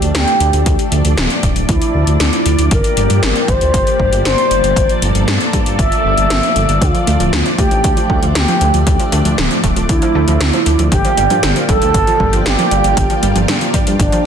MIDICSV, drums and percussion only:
0, 0, Header, 1, 2, 480
1, 0, Start_track
1, 0, Key_signature, -1, "minor"
1, 0, Tempo, 512821
1, 622, Time_signature, 4, 2, 24, 8
1, 13347, End_track
2, 0, Start_track
2, 0, Title_t, "Drums"
2, 20, Note_on_c, 9, 42, 39
2, 114, Note_off_c, 9, 42, 0
2, 138, Note_on_c, 9, 38, 111
2, 138, Note_on_c, 9, 42, 91
2, 231, Note_off_c, 9, 38, 0
2, 231, Note_off_c, 9, 42, 0
2, 258, Note_on_c, 9, 42, 41
2, 352, Note_off_c, 9, 42, 0
2, 379, Note_on_c, 9, 42, 62
2, 472, Note_off_c, 9, 42, 0
2, 499, Note_on_c, 9, 42, 38
2, 592, Note_off_c, 9, 42, 0
2, 619, Note_on_c, 9, 36, 108
2, 619, Note_on_c, 9, 42, 92
2, 712, Note_off_c, 9, 42, 0
2, 713, Note_off_c, 9, 36, 0
2, 740, Note_on_c, 9, 42, 40
2, 833, Note_off_c, 9, 42, 0
2, 860, Note_on_c, 9, 42, 68
2, 953, Note_off_c, 9, 42, 0
2, 980, Note_on_c, 9, 42, 41
2, 1074, Note_off_c, 9, 42, 0
2, 1100, Note_on_c, 9, 38, 120
2, 1100, Note_on_c, 9, 42, 95
2, 1193, Note_off_c, 9, 38, 0
2, 1193, Note_off_c, 9, 42, 0
2, 1220, Note_on_c, 9, 42, 38
2, 1314, Note_off_c, 9, 42, 0
2, 1340, Note_on_c, 9, 36, 60
2, 1340, Note_on_c, 9, 42, 67
2, 1433, Note_off_c, 9, 36, 0
2, 1434, Note_off_c, 9, 42, 0
2, 1460, Note_on_c, 9, 42, 38
2, 1553, Note_off_c, 9, 42, 0
2, 1579, Note_on_c, 9, 42, 95
2, 1580, Note_on_c, 9, 36, 118
2, 1673, Note_off_c, 9, 42, 0
2, 1674, Note_off_c, 9, 36, 0
2, 1699, Note_on_c, 9, 42, 41
2, 1793, Note_off_c, 9, 42, 0
2, 1939, Note_on_c, 9, 42, 39
2, 2033, Note_off_c, 9, 42, 0
2, 2060, Note_on_c, 9, 38, 115
2, 2060, Note_on_c, 9, 42, 90
2, 2153, Note_off_c, 9, 38, 0
2, 2153, Note_off_c, 9, 42, 0
2, 2180, Note_on_c, 9, 42, 40
2, 2274, Note_off_c, 9, 42, 0
2, 2299, Note_on_c, 9, 42, 66
2, 2393, Note_off_c, 9, 42, 0
2, 2420, Note_on_c, 9, 42, 41
2, 2514, Note_off_c, 9, 42, 0
2, 2538, Note_on_c, 9, 42, 90
2, 2540, Note_on_c, 9, 36, 115
2, 2632, Note_off_c, 9, 42, 0
2, 2634, Note_off_c, 9, 36, 0
2, 2660, Note_on_c, 9, 42, 37
2, 2753, Note_off_c, 9, 42, 0
2, 2780, Note_on_c, 9, 42, 69
2, 2874, Note_off_c, 9, 42, 0
2, 2901, Note_on_c, 9, 42, 39
2, 2994, Note_off_c, 9, 42, 0
2, 3020, Note_on_c, 9, 38, 122
2, 3020, Note_on_c, 9, 42, 88
2, 3114, Note_off_c, 9, 38, 0
2, 3114, Note_off_c, 9, 42, 0
2, 3141, Note_on_c, 9, 42, 38
2, 3235, Note_off_c, 9, 42, 0
2, 3260, Note_on_c, 9, 36, 106
2, 3261, Note_on_c, 9, 42, 65
2, 3354, Note_off_c, 9, 36, 0
2, 3354, Note_off_c, 9, 42, 0
2, 3381, Note_on_c, 9, 42, 39
2, 3475, Note_off_c, 9, 42, 0
2, 3500, Note_on_c, 9, 36, 122
2, 3501, Note_on_c, 9, 42, 93
2, 3594, Note_off_c, 9, 36, 0
2, 3595, Note_off_c, 9, 42, 0
2, 3622, Note_on_c, 9, 42, 38
2, 3715, Note_off_c, 9, 42, 0
2, 3740, Note_on_c, 9, 36, 62
2, 3833, Note_off_c, 9, 36, 0
2, 3862, Note_on_c, 9, 42, 38
2, 3955, Note_off_c, 9, 42, 0
2, 3981, Note_on_c, 9, 38, 118
2, 3981, Note_on_c, 9, 42, 86
2, 4075, Note_off_c, 9, 38, 0
2, 4075, Note_off_c, 9, 42, 0
2, 4101, Note_on_c, 9, 42, 37
2, 4194, Note_off_c, 9, 42, 0
2, 4221, Note_on_c, 9, 42, 63
2, 4315, Note_off_c, 9, 42, 0
2, 4342, Note_on_c, 9, 42, 40
2, 4436, Note_off_c, 9, 42, 0
2, 4459, Note_on_c, 9, 36, 115
2, 4462, Note_on_c, 9, 42, 84
2, 4553, Note_off_c, 9, 36, 0
2, 4556, Note_off_c, 9, 42, 0
2, 4581, Note_on_c, 9, 42, 35
2, 4675, Note_off_c, 9, 42, 0
2, 4701, Note_on_c, 9, 42, 65
2, 4794, Note_off_c, 9, 42, 0
2, 4821, Note_on_c, 9, 42, 38
2, 4914, Note_off_c, 9, 42, 0
2, 4940, Note_on_c, 9, 38, 114
2, 4940, Note_on_c, 9, 42, 89
2, 5033, Note_off_c, 9, 38, 0
2, 5033, Note_off_c, 9, 42, 0
2, 5060, Note_on_c, 9, 42, 37
2, 5153, Note_off_c, 9, 42, 0
2, 5179, Note_on_c, 9, 36, 59
2, 5180, Note_on_c, 9, 42, 63
2, 5272, Note_off_c, 9, 36, 0
2, 5274, Note_off_c, 9, 42, 0
2, 5300, Note_on_c, 9, 42, 38
2, 5393, Note_off_c, 9, 42, 0
2, 5418, Note_on_c, 9, 36, 121
2, 5420, Note_on_c, 9, 42, 91
2, 5512, Note_off_c, 9, 36, 0
2, 5514, Note_off_c, 9, 42, 0
2, 5541, Note_on_c, 9, 42, 37
2, 5635, Note_off_c, 9, 42, 0
2, 5780, Note_on_c, 9, 42, 36
2, 5874, Note_off_c, 9, 42, 0
2, 5900, Note_on_c, 9, 38, 113
2, 5900, Note_on_c, 9, 42, 87
2, 5994, Note_off_c, 9, 38, 0
2, 5994, Note_off_c, 9, 42, 0
2, 6021, Note_on_c, 9, 42, 36
2, 6114, Note_off_c, 9, 42, 0
2, 6139, Note_on_c, 9, 42, 59
2, 6233, Note_off_c, 9, 42, 0
2, 6261, Note_on_c, 9, 42, 39
2, 6354, Note_off_c, 9, 42, 0
2, 6379, Note_on_c, 9, 36, 111
2, 6380, Note_on_c, 9, 42, 84
2, 6472, Note_off_c, 9, 36, 0
2, 6474, Note_off_c, 9, 42, 0
2, 6501, Note_on_c, 9, 42, 35
2, 6595, Note_off_c, 9, 42, 0
2, 6621, Note_on_c, 9, 42, 62
2, 6714, Note_off_c, 9, 42, 0
2, 6740, Note_on_c, 9, 42, 37
2, 6834, Note_off_c, 9, 42, 0
2, 6860, Note_on_c, 9, 38, 114
2, 6860, Note_on_c, 9, 42, 84
2, 6953, Note_off_c, 9, 38, 0
2, 6953, Note_off_c, 9, 42, 0
2, 6980, Note_on_c, 9, 42, 33
2, 7073, Note_off_c, 9, 42, 0
2, 7099, Note_on_c, 9, 36, 97
2, 7100, Note_on_c, 9, 42, 63
2, 7193, Note_off_c, 9, 36, 0
2, 7193, Note_off_c, 9, 42, 0
2, 7219, Note_on_c, 9, 42, 35
2, 7312, Note_off_c, 9, 42, 0
2, 7339, Note_on_c, 9, 36, 114
2, 7339, Note_on_c, 9, 42, 88
2, 7432, Note_off_c, 9, 42, 0
2, 7433, Note_off_c, 9, 36, 0
2, 7460, Note_on_c, 9, 42, 37
2, 7553, Note_off_c, 9, 42, 0
2, 7579, Note_on_c, 9, 36, 57
2, 7673, Note_off_c, 9, 36, 0
2, 7699, Note_on_c, 9, 42, 35
2, 7793, Note_off_c, 9, 42, 0
2, 7819, Note_on_c, 9, 38, 107
2, 7819, Note_on_c, 9, 42, 87
2, 7912, Note_off_c, 9, 38, 0
2, 7912, Note_off_c, 9, 42, 0
2, 7940, Note_on_c, 9, 42, 35
2, 8033, Note_off_c, 9, 42, 0
2, 8060, Note_on_c, 9, 42, 58
2, 8153, Note_off_c, 9, 42, 0
2, 8180, Note_on_c, 9, 42, 35
2, 8273, Note_off_c, 9, 42, 0
2, 8300, Note_on_c, 9, 36, 108
2, 8300, Note_on_c, 9, 42, 85
2, 8393, Note_off_c, 9, 36, 0
2, 8393, Note_off_c, 9, 42, 0
2, 8419, Note_on_c, 9, 42, 35
2, 8513, Note_off_c, 9, 42, 0
2, 8539, Note_on_c, 9, 42, 62
2, 8633, Note_off_c, 9, 42, 0
2, 8660, Note_on_c, 9, 42, 39
2, 8754, Note_off_c, 9, 42, 0
2, 8780, Note_on_c, 9, 38, 106
2, 8780, Note_on_c, 9, 42, 87
2, 8874, Note_off_c, 9, 38, 0
2, 8874, Note_off_c, 9, 42, 0
2, 8900, Note_on_c, 9, 42, 35
2, 8993, Note_off_c, 9, 42, 0
2, 9020, Note_on_c, 9, 36, 54
2, 9020, Note_on_c, 9, 42, 65
2, 9113, Note_off_c, 9, 36, 0
2, 9113, Note_off_c, 9, 42, 0
2, 9139, Note_on_c, 9, 42, 35
2, 9233, Note_off_c, 9, 42, 0
2, 9259, Note_on_c, 9, 42, 85
2, 9260, Note_on_c, 9, 36, 109
2, 9352, Note_off_c, 9, 42, 0
2, 9353, Note_off_c, 9, 36, 0
2, 9378, Note_on_c, 9, 42, 36
2, 9472, Note_off_c, 9, 42, 0
2, 9619, Note_on_c, 9, 42, 37
2, 9712, Note_off_c, 9, 42, 0
2, 9739, Note_on_c, 9, 38, 113
2, 9739, Note_on_c, 9, 42, 88
2, 9833, Note_off_c, 9, 38, 0
2, 9833, Note_off_c, 9, 42, 0
2, 9860, Note_on_c, 9, 42, 36
2, 9953, Note_off_c, 9, 42, 0
2, 9979, Note_on_c, 9, 42, 58
2, 10073, Note_off_c, 9, 42, 0
2, 10099, Note_on_c, 9, 42, 35
2, 10193, Note_off_c, 9, 42, 0
2, 10219, Note_on_c, 9, 36, 104
2, 10220, Note_on_c, 9, 42, 89
2, 10313, Note_off_c, 9, 36, 0
2, 10313, Note_off_c, 9, 42, 0
2, 10339, Note_on_c, 9, 42, 37
2, 10433, Note_off_c, 9, 42, 0
2, 10460, Note_on_c, 9, 42, 64
2, 10553, Note_off_c, 9, 42, 0
2, 10580, Note_on_c, 9, 42, 38
2, 10673, Note_off_c, 9, 42, 0
2, 10698, Note_on_c, 9, 38, 108
2, 10698, Note_on_c, 9, 42, 89
2, 10792, Note_off_c, 9, 38, 0
2, 10792, Note_off_c, 9, 42, 0
2, 10820, Note_on_c, 9, 42, 36
2, 10913, Note_off_c, 9, 42, 0
2, 10939, Note_on_c, 9, 36, 93
2, 10940, Note_on_c, 9, 42, 62
2, 11033, Note_off_c, 9, 36, 0
2, 11034, Note_off_c, 9, 42, 0
2, 11061, Note_on_c, 9, 42, 37
2, 11154, Note_off_c, 9, 42, 0
2, 11179, Note_on_c, 9, 36, 105
2, 11180, Note_on_c, 9, 42, 88
2, 11273, Note_off_c, 9, 36, 0
2, 11273, Note_off_c, 9, 42, 0
2, 11301, Note_on_c, 9, 42, 39
2, 11394, Note_off_c, 9, 42, 0
2, 11419, Note_on_c, 9, 36, 58
2, 11513, Note_off_c, 9, 36, 0
2, 11541, Note_on_c, 9, 42, 37
2, 11634, Note_off_c, 9, 42, 0
2, 11661, Note_on_c, 9, 38, 112
2, 11661, Note_on_c, 9, 42, 89
2, 11754, Note_off_c, 9, 38, 0
2, 11754, Note_off_c, 9, 42, 0
2, 11782, Note_on_c, 9, 42, 36
2, 11875, Note_off_c, 9, 42, 0
2, 11900, Note_on_c, 9, 42, 59
2, 11994, Note_off_c, 9, 42, 0
2, 12021, Note_on_c, 9, 42, 39
2, 12115, Note_off_c, 9, 42, 0
2, 12139, Note_on_c, 9, 36, 109
2, 12140, Note_on_c, 9, 42, 95
2, 12233, Note_off_c, 9, 36, 0
2, 12234, Note_off_c, 9, 42, 0
2, 12261, Note_on_c, 9, 42, 37
2, 12354, Note_off_c, 9, 42, 0
2, 12381, Note_on_c, 9, 42, 67
2, 12474, Note_off_c, 9, 42, 0
2, 12501, Note_on_c, 9, 42, 39
2, 12595, Note_off_c, 9, 42, 0
2, 12621, Note_on_c, 9, 38, 112
2, 12621, Note_on_c, 9, 42, 88
2, 12714, Note_off_c, 9, 38, 0
2, 12714, Note_off_c, 9, 42, 0
2, 12741, Note_on_c, 9, 42, 37
2, 12834, Note_off_c, 9, 42, 0
2, 12859, Note_on_c, 9, 36, 59
2, 12860, Note_on_c, 9, 42, 70
2, 12953, Note_off_c, 9, 36, 0
2, 12953, Note_off_c, 9, 42, 0
2, 12981, Note_on_c, 9, 42, 39
2, 13074, Note_off_c, 9, 42, 0
2, 13099, Note_on_c, 9, 36, 109
2, 13101, Note_on_c, 9, 42, 94
2, 13193, Note_off_c, 9, 36, 0
2, 13194, Note_off_c, 9, 42, 0
2, 13221, Note_on_c, 9, 42, 40
2, 13314, Note_off_c, 9, 42, 0
2, 13347, End_track
0, 0, End_of_file